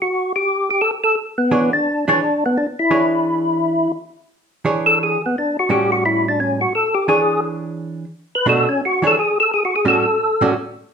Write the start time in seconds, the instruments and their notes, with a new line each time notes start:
0.02 tonewheel organ F#4
0.36 tonewheel organ G4
0.71 tonewheel organ G4
0.81 tonewheel organ A4
1.04 tonewheel organ A4
1.38 tonewheel organ B3
1.51 hollow-body jazz guitar E3 D4 G#4 C#5
1.73 tonewheel organ D4
2.08 hollow-body jazz guitar E3 D4 G#4 C#5, tonewheel organ D4
2.46 tonewheel organ B3
2.57 tonewheel organ D4
2.79 tonewheel organ E4
2.91 hollow-body jazz guitar E3 D4 G#4 C#5
4.65 hollow-body jazz guitar E3 D4 G#4 C#5
4.86 tonewheel organ A4
5.03 tonewheel organ G#4
5.26 tonewheel organ B3
5.38 tonewheel organ D4
5.59 tonewheel organ F#4
5.69 hollow-body jazz guitar A2 G3 C#4 F#4, tonewheel organ G4
5.92 tonewheel organ F#4
6.06 tonewheel organ E4
6.29 tonewheel organ D4
6.40 tonewheel organ C#4
6.61 tonewheel organ F#4
6.75 tonewheel organ A4
6.94 tonewheel organ G4
7.08 hollow-body jazz guitar E3 D4 G#4 C#5, tonewheel organ G#4
8.35 tonewheel organ B4
8.46 hollow-body jazz guitar B2 A3 D4 F#4, tonewheel organ A4
8.69 tonewheel organ C#4
8.85 tonewheel organ F#4
9.02 hollow-body jazz guitar E3 D4 G#4 C#5
9.07 tonewheel organ A4
9.19 tonewheel organ G#4
9.40 tonewheel organ A4
9.54 tonewheel organ G#4
9.65 tonewheel organ F#4
9.76 tonewheel organ G#4
9.85 hollow-body jazz guitar A2 G3 C#4 F#4, tonewheel organ A4
10.41 hollow-body jazz guitar A2 G3 C#4 F#4